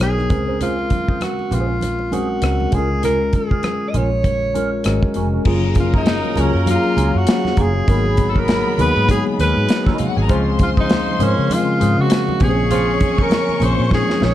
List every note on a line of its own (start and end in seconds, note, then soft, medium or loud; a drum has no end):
0.00 0.31 B1 medium
0.00 0.32 F#3 medium
0.00 0.33 B3 medium
0.00 0.32 D#4 medium
0.00 0.58 G#4 loud
0.00 0.31 A#4 medium
0.00 0.31 C#5 medium
0.00 muted clean electric guitar stroke soft
0.00 cross-stick loud
0.00 muted conga soft
0.18 muted clean electric guitar stroke soft
0.18 cross-stick soft
0.18 high conga medium
0.30 0.89 C#2 medium
0.30 1.28 G#3 medium
0.30 1.28 C4 medium
0.30 1.28 C#4 medium
0.30 0.42 C#4 soft
0.30 0.43 G#4 medium
0.30 1.29 A#4 medium
0.30 0.43 C5 medium
0.30 kick loud
0.30 closed hi-hat medium
0.30 low conga medium
0.48 0.57 C#4 soft
0.48 0.57 G#4 medium
0.48 0.57 C5 medium
0.61 0.76 C#4 medium
0.61 1.24 F4 medium
0.61 0.76 G#4 medium
0.61 0.77 C5 medium
0.61 closed hi-hat medium
0.61 muted conga soft
0.61 low conga medium
0.79 muted conga soft
0.90 muted clean electric guitar stroke soft
0.90 kick medium
0.90 closed hi-hat medium
0.90 high conga medium
1.08 1.18 C#4 soft
1.08 1.18 G#4 soft
1.08 1.17 C5 medium
1.08 kick medium
1.21 1.56 F#4 medium
1.21 cross-stick loud
1.21 closed hi-hat medium
1.21 muted conga soft
1.21 high conga medium
1.39 muted clean electric guitar stroke soft
1.39 muted conga soft
1.51 2.39 A#1 medium
1.51 1.73 C#4 medium
1.51 2.15 F4 medium
1.51 1.68 G#4 medium
1.51 1.68 C5 medium
1.51 closed hi-hat medium
1.51 low conga medium
1.69 muted clean electric guitar stroke soft
1.81 muted clean electric guitar stroke soft
1.81 closed hi-hat medium
1.81 muted conga soft
1.81 high conga medium
1.99 muted clean electric guitar stroke soft
1.99 muted conga soft
2.11 2.33 G#3 medium
2.11 2.34 C4 medium
2.11 2.34 C#4 medium
2.11 2.28 C#4 medium
2.11 2.76 F#4 medium
2.11 2.28 G#4 medium
2.11 2.34 A#4 medium
2.11 2.28 C5 medium
2.11 closed hi-hat medium
2.11 high conga medium
2.42 2.65 C#2 medium
2.42 2.70 G#3 medium
2.42 2.73 C4 medium
2.42 2.71 C#4 medium
2.42 2.73 A#4 medium
2.42 cross-stick loud
2.42 closed hi-hat medium
2.42 muted conga soft
2.60 muted clean electric guitar stroke soft
2.60 muted conga soft
2.60 high conga medium
2.71 3.32 C#2 medium
2.71 3.70 G#3 medium
2.71 3.71 C#4 medium
2.71 2.88 C#4 medium
2.71 3.70 F4 medium
2.71 2.89 F4 medium
2.71 3.04 G#4 medium
2.71 2.80 A4 medium
2.71 2.89 A#4 medium
2.71 kick loud
2.71 closed hi-hat medium
2.71 low conga medium
2.79 3.74 A#4 medium
3.03 3.19 C#4 medium
3.03 3.19 F4 medium
3.03 3.19 A#4 medium
3.03 3.37 A#4 loud
3.03 closed hi-hat medium
3.03 muted conga soft
3.03 low conga medium
3.33 3.91 G#4 loud
3.33 muted clean electric guitar stroke soft
3.33 kick medium
3.33 closed hi-hat medium
3.33 high conga medium
3.51 3.61 C#4 soft
3.51 3.60 F4 soft
3.51 3.60 A#4 medium
3.51 kick medium
3.63 cross-stick loud
3.63 closed hi-hat medium
3.63 muted conga soft
3.63 high conga medium
3.82 muted clean electric guitar stroke soft
3.90 3.98 D#5 medium
3.94 4.81 A#1 medium
3.94 4.09 C#4 medium
3.94 4.10 F4 medium
3.94 4.10 A#4 medium
3.94 5.17 C#5 loud
3.94 closed hi-hat medium
3.94 low conga medium
4.24 muted clean electric guitar stroke soft
4.24 kick medium
4.24 closed hi-hat medium
4.24 high conga medium
4.42 muted clean electric guitar stroke soft
4.54 4.77 G#3 medium
4.54 4.70 C#4 medium
4.54 4.77 C#4 soft
4.54 4.70 F4 medium
4.54 4.77 F4 medium
4.54 4.71 A#4 medium
4.54 4.77 A#4 medium
4.54 closed hi-hat medium
4.54 high conga medium
4.84 4.99 G#1 loud
4.84 5.26 G#3 medium
4.84 5.26 C#4 medium
4.84 5.27 F#4 medium
4.84 5.27 A#4 loud
4.84 muted clean electric guitar stroke soft
4.84 cross-stick loud
4.84 closed hi-hat loud
4.84 muted conga soft
5.03 muted clean electric guitar stroke soft
5.03 kick medium
5.03 high conga medium
5.14 5.38 F1 medium
5.14 5.28 C#4 medium
5.14 5.28 F#4 medium
5.14 5.28 A#4 medium
5.14 closed hi-hat medium
5.14 low conga medium
5.34 5.42 C#4 soft
5.34 5.42 F#4 medium
5.34 5.42 A#4 medium
5.45 6.20 F#1 loud
5.45 6.05 F#3 medium
5.45 7.85 F#3 medium
5.45 6.06 A#3 medium
5.45 5.61 A#3 medium
5.45 6.06 C#4 medium
5.45 6.06 F4 medium
5.45 5.62 F4 medium
5.45 7.85 G#4 medium
5.45 6.06 G#4 medium
5.45 5.62 G#4 medium
5.45 7.54 A#4 medium
5.45 10.26 C#5 medium
5.45 7.85 F5 medium
5.45 7.54 A#5 medium
5.45 kick loud
5.45 crash loud
5.45 muted conga soft
5.63 muted conga soft
5.75 muted clean electric guitar stroke soft
5.75 kick medium
5.75 closed hi-hat medium
5.75 high conga medium
5.80 5.94 F4 medium
5.93 6.03 A#3 medium
5.93 6.42 D#4 medium
5.93 6.03 F4 medium
5.93 6.02 G#4 medium
5.93 kick loud
6.06 muted clean electric guitar stroke soft
6.06 snare loud
6.06 closed hi-hat medium
6.06 muted conga soft
6.06 high conga medium
6.24 high conga soft
6.36 6.50 C#2 medium
6.36 6.58 F#3 medium
6.36 6.52 A#3 medium
6.36 6.58 A#3 medium
6.36 6.58 C#4 medium
6.36 6.52 F4 medium
6.36 6.58 F4 medium
6.36 6.58 G#4 medium
6.36 6.52 G#4 medium
6.36 closed hi-hat medium
6.36 low conga medium
6.40 6.69 C#4 medium
6.54 6.77 F#2 loud
6.54 muted clean electric guitar stroke soft
6.66 7.48 F#3 medium
6.66 7.48 A#3 medium
6.66 7.48 C#4 medium
6.66 6.75 F#4 medium
6.66 7.48 F5 medium
6.66 muted clean electric guitar stroke soft
6.66 closed hi-hat medium
6.66 muted conga soft
6.66 high conga medium
6.70 7.19 F4 medium
6.70 7.52 G#4 medium
6.84 muted conga soft
6.96 7.10 C#2 loud
6.96 7.12 A#3 medium
6.96 7.12 F4 medium
6.96 7.13 G#4 medium
6.96 closed hi-hat medium
6.96 high conga medium
7.15 7.24 F#2 loud
7.15 7.63 F#4 loud
7.27 snare loud
7.27 closed hi-hat loud
7.27 muted conga soft
7.45 muted clean electric guitar stroke soft
7.45 snare soft
7.45 muted conga soft
7.45 high conga medium
7.57 7.80 F#1 medium
7.57 7.73 A#3 medium
7.57 7.73 F4 medium
7.57 7.73 G#4 medium
7.57 kick medium
7.57 closed hi-hat medium
7.57 low conga medium
7.61 8.31 G#4 loud
7.75 muted clean electric guitar stroke soft
7.86 8.62 G#1 medium
7.86 8.48 F#3 medium
7.86 14.34 G#3 medium
7.86 8.48 A#3 medium
7.86 8.03 B3 medium
7.86 9.67 B3 medium
7.86 8.48 B3 medium
7.86 8.48 D#4 medium
7.86 10.26 F#4 medium
7.86 8.03 F#4 medium
7.86 10.27 G#4 medium
7.86 8.48 G#4 medium
7.86 8.04 A#4 medium
7.86 9.68 B5 loud
7.86 kick loud
7.86 closed hi-hat medium
7.86 muted conga soft
8.06 muted conga soft
8.17 muted clean electric guitar stroke soft
8.17 kick medium
8.17 closed hi-hat medium
8.17 high conga medium
8.29 8.39 A4 medium
8.36 8.45 B3 soft
8.36 8.45 F#4 medium
8.36 8.44 A#4 medium
8.36 8.75 A#4 loud
8.36 kick medium
8.48 muted clean electric guitar stroke soft
8.48 snare loud
8.48 closed hi-hat medium
8.48 muted conga soft
8.48 high conga medium
8.66 muted clean electric guitar stroke soft
8.66 muted conga soft
8.66 high conga soft
8.75 8.82 A#4 medium
8.75 low conga medium
8.79 8.92 D#2 medium
8.79 9.00 F#3 medium
8.79 9.00 A#3 medium
8.79 8.94 B3 medium
8.79 9.00 B3 medium
8.79 9.00 D#4 medium
8.79 8.94 F#4 medium
8.79 9.01 G#4 medium
8.79 8.94 A#4 medium
8.79 9.10 B4 loud
8.79 closed hi-hat medium
8.96 9.19 G#2 loud
8.96 muted clean electric guitar stroke soft
9.08 9.90 F#3 medium
9.08 9.90 G#3 medium
9.08 9.91 B3 medium
9.08 9.91 D#4 medium
9.08 9.91 G#4 medium
9.08 9.24 G#4 loud
9.08 muted clean electric guitar stroke soft
9.08 kick medium
9.08 closed hi-hat medium
9.08 muted conga soft
9.08 high conga medium
9.26 muted clean electric guitar stroke soft
9.26 muted conga soft
9.39 9.52 D#2 medium
9.39 9.54 B3 medium
9.39 9.55 F#4 medium
9.39 9.55 A#4 medium
9.39 9.96 B4 loud
9.39 closed hi-hat medium
9.39 high conga medium
9.57 9.66 G#2 medium
9.69 snare loud
9.69 closed hi-hat medium
9.77 9.86 B3 medium
9.77 9.86 B4 medium
9.85 9.98 B3 medium
9.85 9.93 C#4 medium
9.85 9.99 F#4 medium
9.85 9.99 A#4 medium
9.85 9.92 C#5 medium
9.85 kick loud
9.85 snare soft
9.85 high conga medium
9.93 9.99 D#4 medium
9.93 9.99 D#5 medium
9.97 10.07 F4 medium
9.97 10.07 F5 medium
9.97 muted clean electric guitar stroke soft
9.97 muted fingered electric bass stroke soft
9.97 closed hi-hat medium
9.97 low conga medium
10.06 10.16 F#4 medium
10.06 10.16 F#5 loud
10.17 10.26 G#1 medium
10.17 10.23 G#4 medium
10.17 10.23 G#5 medium
10.17 muted clean electric guitar stroke soft
10.23 10.29 A#4 medium
10.23 10.29 A#5 loud
10.29 11.04 C#2 loud
10.29 14.34 C#3 medium
10.29 10.89 F3 medium
10.29 10.49 F3 medium
10.29 10.89 G#3 medium
10.29 10.89 C4 medium
10.29 10.49 C#4 medium
10.29 10.90 C#4 medium
10.29 10.45 F4 medium
10.29 10.49 F4 medium
10.29 10.45 G#4 medium
10.29 10.90 G#4 medium
10.29 12.07 C5 medium
10.29 10.45 C5 loud
10.29 12.39 C5 medium
10.29 12.39 F5 medium
10.29 12.07 C6 loud
10.29 kick loud
10.29 closed hi-hat medium
10.29 muted conga soft
10.59 10.70 F4 medium
10.59 muted clean electric guitar stroke soft
10.59 kick medium
10.59 closed hi-hat medium
10.59 high conga medium
10.77 11.24 D#4 medium
10.77 10.86 F4 soft
10.77 10.86 G#4 medium
10.77 10.86 C5 medium
10.77 kick loud
10.89 snare loud
10.89 closed hi-hat medium
10.89 muted conga soft
10.89 high conga medium
11.07 muted clean electric guitar stroke soft
11.07 muted conga soft
11.07 high conga soft
11.19 11.33 G#2 medium
11.19 11.41 F3 medium
11.19 11.41 G#3 medium
11.19 11.42 C4 medium
11.19 11.42 C#4 medium
11.19 11.55 C#4 medium
11.19 11.35 F4 medium
11.19 11.35 G#4 medium
11.19 11.42 A#4 medium
11.19 11.36 C5 medium
11.19 closed hi-hat medium
11.19 low conga medium
11.37 11.61 C#3 loud
11.37 muted clean electric guitar stroke soft
11.50 12.31 C#3 medium
11.50 12.31 G#3 medium
11.50 12.31 C4 medium
11.50 12.32 C#4 medium
11.50 12.02 F4 loud
11.50 12.32 G#4 medium
11.50 muted clean electric guitar stroke soft
11.50 closed hi-hat medium
11.50 muted conga soft
11.50 high conga medium
11.68 muted clean electric guitar stroke soft
11.80 11.94 G#2 loud
11.80 11.95 F4 medium
11.80 11.96 G#4 medium
11.80 11.96 C5 medium
11.80 closed hi-hat medium
11.80 high conga medium
11.98 12.08 C#3 medium
11.98 12.44 F#4 medium
11.98 muted clean electric guitar stroke soft
12.10 snare loud
12.10 closed hi-hat loud
12.28 muted clean electric guitar stroke soft
12.28 muted conga soft
12.28 high conga medium
12.40 13.22 A#1 loud
12.40 13.38 F3 medium
12.40 13.38 A#3 medium
12.40 14.34 A#3 medium
12.40 13.39 C4 medium
12.40 12.62 C#4 medium
12.40 14.34 C#4 loud
12.40 13.39 C#4 medium
12.40 12.49 G4 medium
12.40 12.57 G#4 medium
12.40 13.23 G#4 loud
12.40 12.56 C5 medium
12.40 14.34 C#6 loud
12.40 kick loud
12.40 closed hi-hat medium
12.40 low conga medium
12.48 13.42 G#4 medium
12.58 muted clean electric guitar stroke soft
12.71 12.90 F3 medium
12.71 12.86 C#4 medium
12.71 12.90 C#4 medium
12.71 12.90 F4 medium
12.71 12.86 G#4 medium
12.71 12.87 C5 medium
12.71 closed hi-hat medium
12.71 low conga medium
13.00 kick medium
13.00 closed hi-hat medium
13.00 high conga medium
13.18 13.28 C#4 soft
13.18 13.27 G#4 medium
13.18 13.27 C5 medium
13.18 kick loud
13.22 13.65 A#4 loud
13.30 muted clean electric guitar stroke soft
13.30 snare loud
13.30 closed hi-hat medium
13.30 muted conga soft
13.30 high conga medium
13.48 muted clean electric guitar stroke soft
13.48 high conga soft
13.60 13.75 A#1 loud
13.60 13.83 F3 medium
13.60 13.83 A#3 medium
13.60 13.83 C4 medium
13.60 13.77 C#4 medium
13.60 13.83 C#4 medium
13.60 13.77 G#4 medium
13.60 13.83 A#4 medium
13.60 13.77 C5 medium
13.60 13.93 C5 medium
13.60 closed hi-hat medium
13.60 low conga medium
13.79 14.02 A#2 loud
13.79 muted clean electric guitar stroke soft
13.91 14.34 F3 medium
13.91 14.34 G#3 medium
13.91 14.34 A#3 medium
13.91 14.34 C#4 medium
13.91 14.34 D#4 medium
13.91 14.26 G#4 loud
13.91 muted clean electric guitar stroke soft
13.91 kick medium
13.91 snare medium
13.91 muted conga soft
13.91 high conga medium
14.08 muted clean electric guitar stroke medium
14.08 snare medium
14.08 muted conga soft
14.20 14.34 A#1 medium
14.20 14.34 C#4 medium
14.20 14.34 G#4 medium
14.20 14.34 C5 medium
14.20 snare medium
14.20 high conga medium
14.24 14.34 C#5 loud